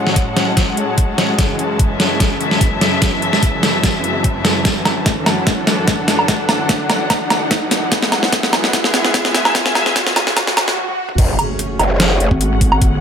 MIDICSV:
0, 0, Header, 1, 9, 480
1, 0, Start_track
1, 0, Key_signature, 3, "minor"
1, 0, Tempo, 408163
1, 1630, Time_signature, 4, 2, 24, 8
1, 15293, End_track
2, 0, Start_track
2, 0, Title_t, "String section"
2, 0, Program_c, 0, 48
2, 0, Note_on_c, 0, 56, 78
2, 0, Note_on_c, 0, 61, 75
2, 0, Note_on_c, 0, 78, 82
2, 0, Note_on_c, 0, 81, 74
2, 1632, Note_on_c, 0, 54, 72
2, 2125, Note_on_c, 0, 76, 85
2, 2883, Note_off_c, 0, 78, 0
2, 5470, Note_off_c, 0, 56, 0
2, 5471, Note_off_c, 0, 61, 0
2, 5881, Note_on_c, 0, 69, 91
2, 5928, Note_on_c, 0, 62, 83
2, 6168, Note_on_c, 0, 78, 86
2, 6396, Note_off_c, 0, 76, 0
2, 9310, Note_off_c, 0, 81, 0
2, 9311, Note_off_c, 0, 69, 0
2, 9595, Note_on_c, 0, 59, 91
2, 9981, Note_on_c, 0, 68, 87
2, 10199, Note_off_c, 0, 62, 0
2, 10321, Note_on_c, 0, 76, 93
2, 10852, Note_off_c, 0, 78, 0
2, 10969, Note_on_c, 0, 80, 85
2, 12669, Note_off_c, 0, 59, 0
2, 12670, Note_off_c, 0, 68, 0
2, 12670, Note_off_c, 0, 76, 0
2, 12670, Note_off_c, 0, 80, 0
2, 12671, Note_off_c, 0, 54, 0
2, 13152, Note_on_c, 0, 61, 72
2, 13560, Note_on_c, 0, 57, 74
2, 14054, Note_on_c, 0, 78, 82
2, 15293, Note_off_c, 0, 57, 0
2, 15293, Note_off_c, 0, 61, 0
2, 15293, Note_off_c, 0, 78, 0
2, 15293, End_track
3, 0, Start_track
3, 0, Title_t, "Supersaw synth"
3, 0, Program_c, 1, 81
3, 0, Note_on_c, 1, 45, 73
3, 0, Note_on_c, 1, 54, 68
3, 0, Note_on_c, 1, 56, 85
3, 1592, Note_off_c, 1, 54, 0
3, 1593, Note_off_c, 1, 45, 0
3, 1631, Note_on_c, 1, 52, 84
3, 1632, Note_on_c, 1, 42, 74
3, 1632, Note_on_c, 1, 49, 69
3, 5424, Note_off_c, 1, 56, 0
3, 5433, Note_off_c, 1, 49, 0
3, 5471, Note_on_c, 1, 50, 70
3, 9263, Note_off_c, 1, 52, 0
3, 9272, Note_off_c, 1, 50, 0
3, 9310, Note_on_c, 1, 52, 69
3, 9310, Note_on_c, 1, 56, 84
3, 12624, Note_off_c, 1, 42, 0
3, 12636, Note_off_c, 1, 52, 0
3, 12636, Note_off_c, 1, 56, 0
3, 13151, Note_on_c, 1, 57, 77
3, 13151, Note_on_c, 1, 68, 83
3, 13152, Note_on_c, 1, 66, 73
3, 15293, Note_off_c, 1, 57, 0
3, 15293, Note_off_c, 1, 66, 0
3, 15293, Note_off_c, 1, 68, 0
3, 15293, End_track
4, 0, Start_track
4, 0, Title_t, "Wobble bass"
4, 0, Program_c, 2, 39
4, 14478, Note_on_c, 2, 32, 100
4, 15137, Note_off_c, 2, 32, 0
4, 15137, Note_on_c, 2, 31, 100
4, 15293, Note_off_c, 2, 31, 0
4, 15293, End_track
5, 0, Start_track
5, 0, Title_t, "Wobble bass"
5, 0, Program_c, 3, 39
5, 13151, Note_on_c, 3, 30, 99
5, 13373, Note_off_c, 3, 30, 0
5, 13871, Note_on_c, 3, 30, 100
5, 14332, Note_off_c, 3, 30, 0
5, 14351, Note_on_c, 3, 30, 100
5, 14458, Note_off_c, 3, 30, 0
5, 15293, End_track
6, 0, Start_track
6, 0, Title_t, "Impact"
6, 0, Program_c, 4, 103
6, 13150, Note_on_c, 4, 60, 78
6, 15070, Note_off_c, 4, 60, 0
6, 15293, End_track
7, 0, Start_track
7, 0, Title_t, "Riser"
7, 0, Program_c, 5, 103
7, 0, Note_on_c, 5, 60, 77
7, 12670, Note_off_c, 5, 60, 0
7, 15293, End_track
8, 0, Start_track
8, 0, Title_t, "Swell"
8, 0, Program_c, 6, 103
8, 12190, Note_on_c, 6, 60, 79
8, 13150, Note_off_c, 6, 60, 0
8, 15293, End_track
9, 0, Start_track
9, 0, Title_t, "Drums"
9, 78, Note_on_c, 9, 38, 46
9, 190, Note_on_c, 9, 36, 92
9, 190, Note_on_c, 9, 42, 82
9, 195, Note_off_c, 9, 38, 0
9, 308, Note_off_c, 9, 36, 0
9, 308, Note_off_c, 9, 42, 0
9, 430, Note_on_c, 9, 38, 58
9, 430, Note_on_c, 9, 42, 55
9, 548, Note_off_c, 9, 38, 0
9, 548, Note_off_c, 9, 42, 0
9, 669, Note_on_c, 9, 38, 56
9, 669, Note_on_c, 9, 42, 83
9, 670, Note_on_c, 9, 36, 97
9, 787, Note_off_c, 9, 38, 0
9, 787, Note_off_c, 9, 42, 0
9, 788, Note_off_c, 9, 36, 0
9, 909, Note_on_c, 9, 42, 57
9, 1027, Note_off_c, 9, 42, 0
9, 1149, Note_on_c, 9, 42, 85
9, 1150, Note_on_c, 9, 36, 96
9, 1266, Note_off_c, 9, 42, 0
9, 1267, Note_off_c, 9, 36, 0
9, 1389, Note_on_c, 9, 38, 59
9, 1389, Note_on_c, 9, 42, 54
9, 1507, Note_off_c, 9, 38, 0
9, 1507, Note_off_c, 9, 42, 0
9, 1629, Note_on_c, 9, 38, 59
9, 1629, Note_on_c, 9, 42, 82
9, 1630, Note_on_c, 9, 36, 96
9, 1747, Note_off_c, 9, 36, 0
9, 1747, Note_off_c, 9, 38, 0
9, 1747, Note_off_c, 9, 42, 0
9, 1870, Note_on_c, 9, 42, 54
9, 1988, Note_off_c, 9, 42, 0
9, 2110, Note_on_c, 9, 36, 96
9, 2110, Note_on_c, 9, 42, 80
9, 2227, Note_off_c, 9, 36, 0
9, 2228, Note_off_c, 9, 42, 0
9, 2350, Note_on_c, 9, 38, 64
9, 2350, Note_on_c, 9, 42, 55
9, 2468, Note_off_c, 9, 38, 0
9, 2468, Note_off_c, 9, 42, 0
9, 2590, Note_on_c, 9, 36, 98
9, 2590, Note_on_c, 9, 38, 63
9, 2590, Note_on_c, 9, 42, 81
9, 2707, Note_off_c, 9, 36, 0
9, 2708, Note_off_c, 9, 38, 0
9, 2708, Note_off_c, 9, 42, 0
9, 2829, Note_on_c, 9, 42, 54
9, 2947, Note_off_c, 9, 42, 0
9, 2956, Note_on_c, 9, 38, 54
9, 3069, Note_on_c, 9, 42, 82
9, 3070, Note_on_c, 9, 36, 96
9, 3074, Note_off_c, 9, 38, 0
9, 3187, Note_off_c, 9, 36, 0
9, 3187, Note_off_c, 9, 42, 0
9, 3309, Note_on_c, 9, 38, 64
9, 3309, Note_on_c, 9, 42, 53
9, 3427, Note_off_c, 9, 38, 0
9, 3427, Note_off_c, 9, 42, 0
9, 3549, Note_on_c, 9, 38, 65
9, 3549, Note_on_c, 9, 42, 77
9, 3550, Note_on_c, 9, 36, 98
9, 3667, Note_off_c, 9, 36, 0
9, 3667, Note_off_c, 9, 38, 0
9, 3667, Note_off_c, 9, 42, 0
9, 3790, Note_on_c, 9, 42, 51
9, 3907, Note_off_c, 9, 42, 0
9, 3917, Note_on_c, 9, 38, 57
9, 4029, Note_on_c, 9, 42, 79
9, 4030, Note_on_c, 9, 36, 96
9, 4035, Note_off_c, 9, 38, 0
9, 4147, Note_off_c, 9, 36, 0
9, 4147, Note_off_c, 9, 42, 0
9, 4269, Note_on_c, 9, 38, 70
9, 4269, Note_on_c, 9, 42, 52
9, 4387, Note_off_c, 9, 38, 0
9, 4387, Note_off_c, 9, 42, 0
9, 4510, Note_on_c, 9, 36, 100
9, 4510, Note_on_c, 9, 38, 73
9, 4510, Note_on_c, 9, 42, 77
9, 4627, Note_off_c, 9, 36, 0
9, 4628, Note_off_c, 9, 38, 0
9, 4628, Note_off_c, 9, 42, 0
9, 4749, Note_on_c, 9, 42, 54
9, 4867, Note_off_c, 9, 42, 0
9, 4989, Note_on_c, 9, 42, 79
9, 4990, Note_on_c, 9, 36, 95
9, 5107, Note_off_c, 9, 36, 0
9, 5107, Note_off_c, 9, 42, 0
9, 5229, Note_on_c, 9, 38, 73
9, 5229, Note_on_c, 9, 42, 51
9, 5347, Note_off_c, 9, 38, 0
9, 5347, Note_off_c, 9, 42, 0
9, 5469, Note_on_c, 9, 38, 74
9, 5469, Note_on_c, 9, 42, 73
9, 5470, Note_on_c, 9, 36, 97
9, 5586, Note_off_c, 9, 38, 0
9, 5586, Note_off_c, 9, 42, 0
9, 5587, Note_off_c, 9, 36, 0
9, 5709, Note_on_c, 9, 38, 73
9, 5709, Note_on_c, 9, 42, 49
9, 5709, Note_on_c, 9, 77, 53
9, 5826, Note_off_c, 9, 38, 0
9, 5826, Note_off_c, 9, 42, 0
9, 5826, Note_off_c, 9, 77, 0
9, 5950, Note_on_c, 9, 36, 98
9, 5950, Note_on_c, 9, 38, 75
9, 5950, Note_on_c, 9, 42, 75
9, 6067, Note_off_c, 9, 36, 0
9, 6067, Note_off_c, 9, 38, 0
9, 6067, Note_off_c, 9, 42, 0
9, 6189, Note_on_c, 9, 38, 80
9, 6189, Note_on_c, 9, 42, 50
9, 6189, Note_on_c, 9, 77, 53
9, 6307, Note_off_c, 9, 38, 0
9, 6307, Note_off_c, 9, 42, 0
9, 6307, Note_off_c, 9, 77, 0
9, 6429, Note_on_c, 9, 38, 78
9, 6429, Note_on_c, 9, 42, 76
9, 6430, Note_on_c, 9, 36, 96
9, 6547, Note_off_c, 9, 38, 0
9, 6547, Note_off_c, 9, 42, 0
9, 6548, Note_off_c, 9, 36, 0
9, 6670, Note_on_c, 9, 38, 81
9, 6670, Note_on_c, 9, 42, 53
9, 6787, Note_off_c, 9, 38, 0
9, 6787, Note_off_c, 9, 42, 0
9, 6909, Note_on_c, 9, 38, 80
9, 6909, Note_on_c, 9, 42, 75
9, 6910, Note_on_c, 9, 36, 97
9, 7027, Note_off_c, 9, 38, 0
9, 7027, Note_off_c, 9, 42, 0
9, 7028, Note_off_c, 9, 36, 0
9, 7149, Note_on_c, 9, 38, 82
9, 7149, Note_on_c, 9, 46, 88
9, 7267, Note_off_c, 9, 38, 0
9, 7267, Note_off_c, 9, 46, 0
9, 7277, Note_on_c, 9, 77, 79
9, 7390, Note_on_c, 9, 36, 98
9, 7390, Note_on_c, 9, 38, 84
9, 7390, Note_on_c, 9, 42, 76
9, 7395, Note_off_c, 9, 77, 0
9, 7507, Note_off_c, 9, 38, 0
9, 7507, Note_off_c, 9, 42, 0
9, 7508, Note_off_c, 9, 36, 0
9, 7629, Note_on_c, 9, 38, 83
9, 7629, Note_on_c, 9, 42, 51
9, 7629, Note_on_c, 9, 77, 54
9, 7747, Note_off_c, 9, 38, 0
9, 7747, Note_off_c, 9, 42, 0
9, 7747, Note_off_c, 9, 77, 0
9, 7869, Note_on_c, 9, 38, 86
9, 7869, Note_on_c, 9, 42, 77
9, 7870, Note_on_c, 9, 36, 98
9, 7987, Note_off_c, 9, 38, 0
9, 7987, Note_off_c, 9, 42, 0
9, 7988, Note_off_c, 9, 36, 0
9, 8110, Note_on_c, 9, 38, 90
9, 8110, Note_on_c, 9, 42, 52
9, 8110, Note_on_c, 9, 77, 56
9, 8227, Note_off_c, 9, 38, 0
9, 8227, Note_off_c, 9, 42, 0
9, 8227, Note_off_c, 9, 77, 0
9, 8350, Note_on_c, 9, 36, 98
9, 8350, Note_on_c, 9, 38, 87
9, 8350, Note_on_c, 9, 42, 78
9, 8350, Note_on_c, 9, 77, 57
9, 8468, Note_off_c, 9, 36, 0
9, 8468, Note_off_c, 9, 38, 0
9, 8468, Note_off_c, 9, 42, 0
9, 8468, Note_off_c, 9, 77, 0
9, 8590, Note_on_c, 9, 38, 92
9, 8590, Note_on_c, 9, 42, 53
9, 8590, Note_on_c, 9, 77, 66
9, 8708, Note_off_c, 9, 38, 0
9, 8708, Note_off_c, 9, 42, 0
9, 8708, Note_off_c, 9, 77, 0
9, 8829, Note_on_c, 9, 38, 91
9, 8829, Note_on_c, 9, 42, 77
9, 8830, Note_on_c, 9, 36, 97
9, 8947, Note_off_c, 9, 38, 0
9, 8947, Note_off_c, 9, 42, 0
9, 8948, Note_off_c, 9, 36, 0
9, 9069, Note_on_c, 9, 38, 91
9, 9069, Note_on_c, 9, 46, 93
9, 9187, Note_off_c, 9, 38, 0
9, 9187, Note_off_c, 9, 46, 0
9, 9310, Note_on_c, 9, 36, 97
9, 9310, Note_on_c, 9, 38, 94
9, 9310, Note_on_c, 9, 42, 79
9, 9427, Note_off_c, 9, 38, 0
9, 9427, Note_off_c, 9, 42, 0
9, 9428, Note_off_c, 9, 36, 0
9, 9437, Note_on_c, 9, 38, 86
9, 9550, Note_off_c, 9, 38, 0
9, 9550, Note_on_c, 9, 38, 94
9, 9550, Note_on_c, 9, 42, 52
9, 9550, Note_on_c, 9, 77, 55
9, 9668, Note_off_c, 9, 38, 0
9, 9668, Note_off_c, 9, 42, 0
9, 9668, Note_off_c, 9, 77, 0
9, 9677, Note_on_c, 9, 38, 81
9, 9790, Note_off_c, 9, 38, 0
9, 9790, Note_on_c, 9, 38, 95
9, 9790, Note_on_c, 9, 42, 81
9, 9791, Note_on_c, 9, 36, 100
9, 9908, Note_off_c, 9, 36, 0
9, 9908, Note_off_c, 9, 38, 0
9, 9908, Note_off_c, 9, 42, 0
9, 9917, Note_on_c, 9, 38, 85
9, 10030, Note_off_c, 9, 38, 0
9, 10030, Note_on_c, 9, 38, 97
9, 10030, Note_on_c, 9, 42, 54
9, 10030, Note_on_c, 9, 77, 57
9, 10148, Note_off_c, 9, 38, 0
9, 10148, Note_off_c, 9, 42, 0
9, 10148, Note_off_c, 9, 77, 0
9, 10158, Note_on_c, 9, 38, 88
9, 10271, Note_off_c, 9, 38, 0
9, 10271, Note_on_c, 9, 36, 100
9, 10271, Note_on_c, 9, 38, 99
9, 10271, Note_on_c, 9, 42, 80
9, 10388, Note_off_c, 9, 36, 0
9, 10389, Note_off_c, 9, 38, 0
9, 10389, Note_off_c, 9, 42, 0
9, 10399, Note_on_c, 9, 38, 84
9, 10511, Note_off_c, 9, 38, 0
9, 10511, Note_on_c, 9, 38, 102
9, 10511, Note_on_c, 9, 42, 53
9, 10628, Note_off_c, 9, 38, 0
9, 10628, Note_off_c, 9, 42, 0
9, 10638, Note_on_c, 9, 38, 88
9, 10750, Note_off_c, 9, 38, 0
9, 10750, Note_on_c, 9, 38, 101
9, 10750, Note_on_c, 9, 42, 79
9, 10751, Note_on_c, 9, 36, 98
9, 10868, Note_off_c, 9, 36, 0
9, 10868, Note_off_c, 9, 38, 0
9, 10868, Note_off_c, 9, 42, 0
9, 10878, Note_on_c, 9, 38, 89
9, 10990, Note_off_c, 9, 38, 0
9, 10990, Note_on_c, 9, 38, 100
9, 10990, Note_on_c, 9, 46, 96
9, 11108, Note_off_c, 9, 38, 0
9, 11108, Note_off_c, 9, 46, 0
9, 11117, Note_on_c, 9, 38, 89
9, 11117, Note_on_c, 9, 77, 88
9, 11230, Note_off_c, 9, 38, 0
9, 11230, Note_on_c, 9, 38, 105
9, 11230, Note_on_c, 9, 42, 82
9, 11231, Note_on_c, 9, 36, 97
9, 11234, Note_off_c, 9, 77, 0
9, 11347, Note_off_c, 9, 38, 0
9, 11347, Note_off_c, 9, 42, 0
9, 11348, Note_off_c, 9, 36, 0
9, 11356, Note_on_c, 9, 38, 92
9, 11470, Note_off_c, 9, 38, 0
9, 11470, Note_on_c, 9, 38, 102
9, 11470, Note_on_c, 9, 42, 55
9, 11470, Note_on_c, 9, 77, 56
9, 11588, Note_off_c, 9, 38, 0
9, 11588, Note_off_c, 9, 42, 0
9, 11588, Note_off_c, 9, 77, 0
9, 11597, Note_on_c, 9, 38, 86
9, 11711, Note_off_c, 9, 38, 0
9, 11711, Note_on_c, 9, 36, 97
9, 11711, Note_on_c, 9, 38, 105
9, 11711, Note_on_c, 9, 42, 84
9, 11828, Note_off_c, 9, 36, 0
9, 11828, Note_off_c, 9, 38, 0
9, 11828, Note_off_c, 9, 42, 0
9, 11837, Note_on_c, 9, 38, 95
9, 11950, Note_off_c, 9, 38, 0
9, 11950, Note_on_c, 9, 38, 109
9, 11950, Note_on_c, 9, 42, 57
9, 11950, Note_on_c, 9, 77, 56
9, 12068, Note_off_c, 9, 38, 0
9, 12068, Note_off_c, 9, 42, 0
9, 12068, Note_off_c, 9, 77, 0
9, 12077, Note_on_c, 9, 38, 96
9, 12190, Note_off_c, 9, 38, 0
9, 12190, Note_on_c, 9, 36, 100
9, 12190, Note_on_c, 9, 38, 108
9, 12190, Note_on_c, 9, 42, 80
9, 12190, Note_on_c, 9, 77, 56
9, 12308, Note_off_c, 9, 36, 0
9, 12308, Note_off_c, 9, 38, 0
9, 12308, Note_off_c, 9, 42, 0
9, 12308, Note_off_c, 9, 77, 0
9, 12318, Note_on_c, 9, 38, 94
9, 12431, Note_off_c, 9, 38, 0
9, 12431, Note_on_c, 9, 38, 117
9, 12431, Note_on_c, 9, 42, 57
9, 12431, Note_on_c, 9, 77, 67
9, 12548, Note_off_c, 9, 38, 0
9, 12548, Note_off_c, 9, 42, 0
9, 12548, Note_off_c, 9, 77, 0
9, 12558, Note_on_c, 9, 38, 98
9, 12671, Note_on_c, 9, 48, 63
9, 12675, Note_off_c, 9, 38, 0
9, 12788, Note_off_c, 9, 48, 0
9, 12798, Note_on_c, 9, 48, 62
9, 12916, Note_off_c, 9, 48, 0
9, 13038, Note_on_c, 9, 45, 88
9, 13151, Note_on_c, 9, 36, 121
9, 13151, Note_on_c, 9, 42, 81
9, 13151, Note_on_c, 9, 49, 102
9, 13156, Note_off_c, 9, 45, 0
9, 13268, Note_off_c, 9, 36, 0
9, 13269, Note_off_c, 9, 42, 0
9, 13269, Note_off_c, 9, 49, 0
9, 13392, Note_on_c, 9, 42, 55
9, 13392, Note_on_c, 9, 77, 54
9, 13509, Note_off_c, 9, 42, 0
9, 13509, Note_off_c, 9, 77, 0
9, 13631, Note_on_c, 9, 42, 85
9, 13749, Note_off_c, 9, 42, 0
9, 13871, Note_on_c, 9, 42, 57
9, 13871, Note_on_c, 9, 77, 55
9, 13988, Note_off_c, 9, 42, 0
9, 13988, Note_off_c, 9, 77, 0
9, 14110, Note_on_c, 9, 38, 119
9, 14110, Note_on_c, 9, 42, 86
9, 14228, Note_off_c, 9, 38, 0
9, 14228, Note_off_c, 9, 42, 0
9, 14351, Note_on_c, 9, 42, 58
9, 14469, Note_off_c, 9, 42, 0
9, 14478, Note_on_c, 9, 36, 63
9, 14591, Note_on_c, 9, 42, 84
9, 14595, Note_off_c, 9, 36, 0
9, 14709, Note_off_c, 9, 42, 0
9, 14831, Note_on_c, 9, 36, 102
9, 14831, Note_on_c, 9, 46, 99
9, 14948, Note_off_c, 9, 36, 0
9, 14948, Note_off_c, 9, 46, 0
9, 14958, Note_on_c, 9, 77, 82
9, 15071, Note_on_c, 9, 36, 124
9, 15071, Note_on_c, 9, 42, 82
9, 15075, Note_off_c, 9, 77, 0
9, 15188, Note_off_c, 9, 36, 0
9, 15189, Note_off_c, 9, 42, 0
9, 15293, End_track
0, 0, End_of_file